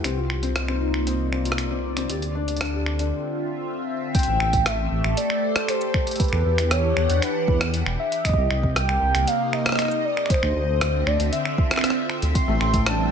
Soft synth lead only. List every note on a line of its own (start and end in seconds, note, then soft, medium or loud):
4.15 4.68 G5 loud
4.66 5.17 E5 loud
5.17 5.70 D5 loud
5.69 6.19 C5 loud
6.20 6.73 B4 loud
6.71 7.24 C#5 medium
7.22 7.74 B4 medium
7.99 8.26 E5 loud
8.25 8.75 D#5 loud
8.76 9.29 G5 loud
9.27 9.55 F5 loud
9.53 10.06 D#5 loud
10.04 10.31 D5 loud
10.30 11.08 C5 loud
11.07 11.32 D5 medium
11.33 11.80 E5 medium
12.35 12.88 C6 loud
12.87 13.12 A5 loud